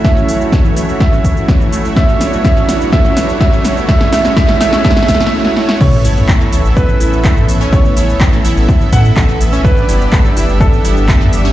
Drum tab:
CC |--------------------------------|--------------------------------|--------------------------------|x-------------------------------|
HH |----o-------o-------o-------o---|----o-------o-------o-------o---|----o-------o-------o-----------|----o-------o-------o-------o---|
SH |x-x-x-x-x-x-x-x-x-x-x-x-x-x-x-x-|x-x-x-x-x-x-x-x-x-x-x-x-x-x-x-x-|x-x-x-x-x-x-x-x-x-x-x-x---------|x-x-x-x-x-x-x-x-x-x-x-x-x-x-x-x-|
CP |--------------------------------|--------------------------------|--------------------------------|--------x---------------x-------|
SD |o-------o-------o-------o-------|o---o---o---o---o---o---o---o---|o-o-o-o-o-o-o-o-oooooooo--o-o-o-|--------------------------------|
BD |o-------o-------o---o---o-------|o-------o-------o-------o-------|o-------o-------o---o-----------|o-------o-------o-------o-------|

CC |--------------------------------|--------------------------------|
HH |----o-------o-------o-------o---|----o-------o-------o-------o---|
SH |x-x-x-x-x-x-x-x-x-x-x-x-x-x-x-x-|x-x-x-x-x-x-x-x-x-x-x-x-x-x-x-x-|
CP |--------x---------------x-------|--------x---------------x-------|
SD |--------------------------------|--------------------------------|
BD |o-------o-------o---o---o-------|o-------o-------o-------o-------|